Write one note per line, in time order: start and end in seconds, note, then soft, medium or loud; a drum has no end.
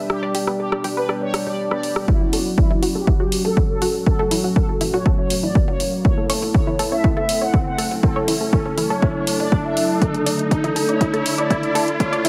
0.00 2.13 E3 medium
0.00 2.05 G3 medium
0.00 2.04 B3 medium
0.00 2.05 D4 medium
0.00 2.05 G4 medium
0.00 2.04 D5 medium
0.10 0.43 G4 loud
0.10 2.06 A4 medium
0.10 cross-stick medium
0.23 0.34 D5 loud
0.35 0.45 G4 medium
0.35 open hi-hat loud
0.47 0.57 B4 medium
0.47 cross-stick soft
0.59 0.84 G4 medium
0.72 0.84 D5 medium
0.72 cross-stick medium
0.84 0.94 G4 loud
0.84 open hi-hat medium
0.97 1.13 B4 medium
0.97 1.03 B4 loud
1.09 1.21 D5 medium
1.09 cross-stick medium
1.22 1.38 C#5 medium
1.34 cross-stick medium
1.34 open hi-hat loud
1.47 1.56 G4 medium
1.47 1.63 D5 medium
1.71 1.83 B4 medium
1.71 1.96 D5 medium
1.71 cross-stick soft
1.83 open hi-hat medium
1.96 cross-stick medium
2.08 2.80 F#3 medium
2.08 6.01 A3 medium
2.08 2.80 C#4 medium
2.08 2.42 E4 loud
2.08 2.20 E4 medium
2.08 2.80 F#4 medium
2.08 6.01 F#4 medium
2.08 4.05 E5 medium
2.08 kick loud
2.08 riser medium
2.21 2.32 F#4 medium
2.33 2.39 A4 medium
2.33 open hi-hat loud
2.58 2.83 E4 medium
2.58 kick loud
2.71 2.82 E4 loud
2.71 mid tom medium
2.82 4.04 F#3 medium
2.82 4.04 C#4 medium
2.82 2.93 F#4 loud
2.82 4.04 F#4 medium
2.82 open hi-hat medium
2.95 3.12 G4 medium
2.95 3.07 A4 medium
3.07 3.19 E4 medium
3.07 kick loud
3.20 3.32 F#4 loud
3.20 3.37 G4 medium
3.32 open hi-hat loud
3.45 3.61 A4 medium
3.45 3.54 A4 medium
3.45 mid tom medium
3.57 3.69 E4 medium
3.57 kick loud
3.70 3.95 A4 medium
3.82 3.92 F#4 loud
3.82 open hi-hat medium
4.07 4.78 F#3 medium
4.07 4.78 C#4 medium
4.07 4.78 F#4 medium
4.07 4.40 A4 loud
4.07 6.03 F#5 medium
4.07 kick loud
4.19 4.31 A4 loud
4.19 mid tom medium
4.31 4.41 E4 medium
4.31 open hi-hat loud
4.44 4.54 F#4 medium
4.56 4.81 A4 loud
4.56 kick loud
4.69 4.80 A4 medium
4.81 6.02 F#3 medium
4.81 6.02 C#4 medium
4.81 4.91 E4 loud
4.81 6.02 F#4 medium
4.81 open hi-hat medium
4.94 4.99 F#4 loud
4.94 5.10 C#5 medium
4.94 mid tom medium
5.06 5.18 A4 medium
5.06 kick loud
5.18 5.35 C#5 medium
5.30 open hi-hat loud
5.43 5.53 E4 medium
5.43 5.60 D5 medium
5.55 kick loud
5.68 5.79 F#4 medium
5.68 5.93 C#5 medium
5.68 mid tom medium
5.80 open hi-hat medium
6.05 9.98 F#3 medium
6.05 6.76 A3 medium
6.05 9.98 C#4 medium
6.05 6.17 E4 medium
6.05 6.76 E4 medium
6.05 12.29 A4 medium
6.05 6.76 A4 medium
6.05 6.38 C#5 loud
6.05 12.29 E5 medium
6.05 kick loud
6.18 6.29 A4 medium
6.30 6.36 C#5 loud
6.30 open hi-hat loud
6.42 mid tom medium
6.54 6.79 C#5 loud
6.54 kick loud
6.67 6.79 E4 medium
6.79 8.00 A3 medium
6.79 8.00 E4 medium
6.79 6.89 A4 loud
6.79 8.00 A4 medium
6.79 open hi-hat medium
6.92 7.03 C#5 medium
6.92 7.08 E5 medium
7.04 7.16 E4 loud
7.04 kick loud
7.17 7.28 A4 loud
7.17 7.33 E5 medium
7.17 mid tom medium
7.29 open hi-hat loud
7.41 7.51 C#5 medium
7.41 7.58 F#5 medium
7.54 7.66 E4 medium
7.54 kick loud
7.67 7.91 F#5 medium
7.78 7.88 A4 medium
7.78 open hi-hat loud
7.91 mid tom medium
8.03 8.75 A3 medium
8.03 8.75 E4 medium
8.03 8.75 A4 medium
8.03 8.37 A4 loud
8.03 kick loud
8.16 8.27 C#5 loud
8.28 8.38 E4 loud
8.28 open hi-hat loud
8.41 8.50 A4 medium
8.53 8.78 A4 medium
8.53 kick loud
8.66 8.77 C#5 medium
8.66 mid tom medium
8.78 9.50 A3 medium
8.78 8.88 E4 loud
8.78 9.50 E4 medium
8.78 9.50 A4 medium
8.78 open hi-hat medium
8.90 8.96 A4 loud
8.90 9.07 C#5 medium
9.02 9.15 C#5 medium
9.02 kick loud
9.15 9.32 C#5 medium
9.27 open hi-hat loud
9.40 9.56 D5 medium
9.40 9.49 A5 medium
9.40 mid tom medium
9.52 9.74 A3 medium
9.52 9.74 E4 medium
9.52 9.74 A4 loud
9.52 kick loud
9.65 9.76 E5 medium
9.65 9.90 E5 medium
9.77 9.99 A3 medium
9.77 9.99 E4 medium
9.77 9.99 A4 loud
9.77 open hi-hat medium
10.02 10.73 D3 medium
10.02 10.73 A3 medium
10.02 10.73 D4 medium
10.02 12.29 D4 medium
10.02 10.14 E4 medium
10.02 10.35 A4 loud
10.02 kick loud
10.02 closed hi-hat medium
10.14 10.26 A4 medium
10.14 closed hi-hat soft
10.26 10.32 D5 loud
10.26 open hi-hat loud
10.39 closed hi-hat soft
10.51 10.76 A4 loud
10.51 kick loud
10.51 closed hi-hat medium
10.64 10.75 E4 loud
10.64 closed hi-hat soft
10.64 mid tom medium
10.76 11.97 D3 medium
10.76 11.97 A3 medium
10.76 11.97 D4 medium
10.76 10.86 A4 loud
10.76 open hi-hat medium
10.89 11.05 C#5 medium
10.89 11.00 D5 medium
10.89 closed hi-hat soft
11.01 11.13 E4 medium
11.01 kick loud
11.01 closed hi-hat medium
11.13 11.25 A4 loud
11.13 11.30 C#5 medium
11.13 closed hi-hat soft
11.26 open hi-hat loud
11.38 11.55 D5 medium
11.38 11.48 D5 medium
11.38 closed hi-hat soft
11.38 mid tom medium
11.50 11.62 E4 medium
11.50 kick loud
11.50 closed hi-hat medium
11.63 11.88 D5 loud
11.63 closed hi-hat soft
11.75 11.85 A4 loud
11.75 open hi-hat medium
11.88 closed hi-hat soft
12.00 12.29 D3 medium
12.00 12.29 A3 medium
12.00 12.29 D4 medium
12.00 12.29 C#5 loud
12.00 kick loud
12.00 closed hi-hat medium
12.13 12.24 D5 loud
12.13 closed hi-hat soft
12.13 mid tom loud
12.25 12.29 E4 loud
12.25 open hi-hat loud